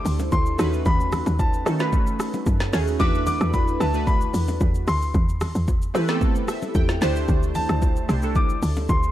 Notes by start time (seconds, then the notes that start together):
Already playing: A3 D4 E4 G4 A4 C5 D6
0.05 D2, open hi-hat, high bongo, shaker
0.19 low bongo, shaker
0.32 D2 C6, kick, high bongo, shaker
0.46 shaker
0.58 D#2 A3 C#4 D#4 F#4 B4, cross-stick, open hi-hat, shaker
0.73 shaker
0.86 D#2 B5, kick, low conga, shaker
1.00 shaker
1.12 cross-stick, open hi-hat, low bongo, low conga, shaker
1.26 D#2, low bongo, shaker
1.39 A5, kick, high bongo, shaker
1.53 shaker
1.65 D#3 A3 C#4 D#4 F#4 A4, cross-stick, open hi-hat, low bongo, shaker
1.79 A3 C#4 D#4 F#4 B4 B5, snare, shaker
1.92 kick, low conga, shaker
2.07 shaker
2.19 cross-stick, open hi-hat, high bongo, shaker
2.34 low bongo, shaker
2.46 F#2, kick, high bongo, shaker
2.60 snare, shaker
2.72 D#2 A3 C#4 D#4 F#4 G#4, snare, open hi-hat, shaker
2.88 shaker
2.99 E2 A3 D4 E4 F#4 B4 D6, kick, low conga, shaker
3.15 shaker
3.27 D6, open hi-hat, low bongo, low conga, shaker
3.41 E2, cross-stick, shaker
3.54 B5, kick, high bongo, shaker
3.68 shaker
3.80 D2 A3 D4 E4 F#4 B4 A5, cross-stick, open hi-hat, low bongo, shaker
3.94 A3 D4 E4 F#4 B4, shaker
4.07 B5, kick, low conga, shaker
4.21 shaker
4.33 E2, open hi-hat, high bongo, shaker
4.48 low bongo, shaker
4.61 E2, kick, high bongo, shaker
4.75 shaker
4.88 D2 C6, cross-stick, open hi-hat, shaker
5.02 shaker
5.14 E2, kick, low conga, shaker
5.29 shaker
5.41 cross-stick, open hi-hat, low bongo, low conga, shaker
5.55 E2, shaker
5.68 kick, high bongo, shaker
5.82 shaker
5.94 E3 A3 C4 E4 G4 B4, cross-stick, open hi-hat, low bongo, shaker
6.08 A3 B3 E4 G4 A4, snare, shaker
6.15 C4
6.21 kick, low conga, shaker
6.35 shaker
6.48 E5, cross-stick, open hi-hat, high bongo, shaker
6.62 low bongo, shaker
6.75 E2 G5, kick, high bongo, shaker
6.89 snare, shaker
7.01 D2 A3 D4 E4 G4 C5 A5, snare, open hi-hat, shaker
7.16 shaker
7.28 D2, kick, low conga, shaker
7.43 shaker
7.55 A5, open hi-hat, low bongo, low conga, shaker
7.69 D2, cross-stick, shaker
7.82 kick, high bongo, shaker
7.96 shaker
8.08 C2 A3 D4 E4 G4 C5, cross-stick, open hi-hat, low bongo, shaker
8.22 A3 D4 E4 G4 A4, shaker
8.35 D6, kick, low conga, shaker
8.49 shaker
8.62 D2, open hi-hat, high bongo, shaker
8.76 low bongo, shaker
8.89 D2 C6, kick, high bongo, shaker
9.03 shaker